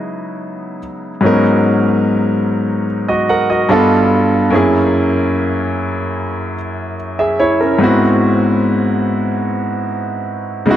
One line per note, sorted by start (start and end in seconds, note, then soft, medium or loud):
0.00 0.77 C#3 medium
0.00 0.77 F#3 medium
0.00 0.78 B3 medium
0.00 0.78 D#4 medium
0.00 0.79 E4 medium
0.00 0.80 G#4 medium
1.21 3.65 G#2 medium
1.21 3.65 F#3 medium
1.21 3.66 B3 medium
1.21 3.66 C#4 medium
1.25 3.67 D#4 medium
1.25 2.86 A#4 medium
3.08 3.28 F#4 medium
3.08 3.28 D#5 medium
3.29 3.49 A#4 medium
3.29 3.49 F#5 medium
3.50 3.89 F#4 medium
3.50 3.89 D#5 medium
3.69 4.52 G2 medium
3.69 4.52 B3 medium
3.69 4.52 D4 medium
3.69 4.53 F4 medium
3.69 4.53 A4 medium
4.50 6.94 F#2 medium
4.50 6.95 A#3 medium
4.50 6.54 C#4 medium
4.50 6.55 E4 medium
4.55 6.55 G#4 medium
7.19 7.39 G#4 medium
7.19 7.39 E5 medium
7.40 7.60 E4 medium
7.40 7.59 C#5 medium
7.60 8.00 C#4 medium
7.60 8.00 A#4 medium
7.79 10.64 G#2 medium
7.79 10.64 B3 medium
7.79 10.65 C4 medium
7.83 10.66 E4 medium
7.83 10.66 F#4 medium
10.66 10.77 C#3 medium
10.66 10.77 G#3 medium
10.66 10.77 B3 medium
10.66 10.77 D#4 medium
10.70 10.77 E4 medium
10.70 10.77 F#4 medium